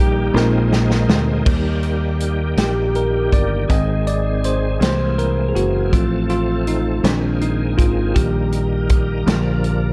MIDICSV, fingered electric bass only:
0, 0, Header, 1, 2, 480
1, 0, Start_track
1, 0, Key_signature, -3, "major"
1, 0, Tempo, 743494
1, 946, Time_signature, 6, 3, 24, 8
1, 6410, End_track
2, 0, Start_track
2, 0, Title_t, "Fingered electric bass"
2, 0, Program_c, 0, 33
2, 0, Note_on_c, 0, 34, 99
2, 201, Note_off_c, 0, 34, 0
2, 221, Note_on_c, 0, 34, 97
2, 677, Note_off_c, 0, 34, 0
2, 702, Note_on_c, 0, 38, 86
2, 924, Note_off_c, 0, 38, 0
2, 944, Note_on_c, 0, 39, 87
2, 1639, Note_off_c, 0, 39, 0
2, 1661, Note_on_c, 0, 34, 80
2, 2118, Note_off_c, 0, 34, 0
2, 2145, Note_on_c, 0, 31, 73
2, 2367, Note_off_c, 0, 31, 0
2, 2388, Note_on_c, 0, 32, 93
2, 3082, Note_off_c, 0, 32, 0
2, 3104, Note_on_c, 0, 36, 93
2, 3560, Note_off_c, 0, 36, 0
2, 3586, Note_on_c, 0, 30, 74
2, 3807, Note_off_c, 0, 30, 0
2, 3827, Note_on_c, 0, 33, 82
2, 4521, Note_off_c, 0, 33, 0
2, 4543, Note_on_c, 0, 34, 92
2, 5000, Note_off_c, 0, 34, 0
2, 5026, Note_on_c, 0, 32, 78
2, 5247, Note_off_c, 0, 32, 0
2, 5267, Note_on_c, 0, 34, 83
2, 5961, Note_off_c, 0, 34, 0
2, 5985, Note_on_c, 0, 34, 84
2, 6410, Note_off_c, 0, 34, 0
2, 6410, End_track
0, 0, End_of_file